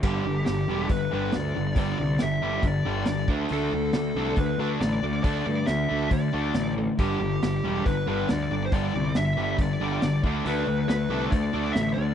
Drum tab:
CC |x-------|--------|--------|--------|
HH |--o-o-o-|o-o-o-o-|o-o-o-o-|o-o-o-o-|
SD |--o---o-|--o---o-|--o---o-|--o---o-|
BD |o---o---|o---o--o|----o---|o---o---|

CC |--------|--------|--------|
HH |o-o-o-o-|o-o-o-o-|o-o-o-o-|
SD |--o---o-|--o---o-|--o---o-|
BD |o---o---|o---o--o|----o---|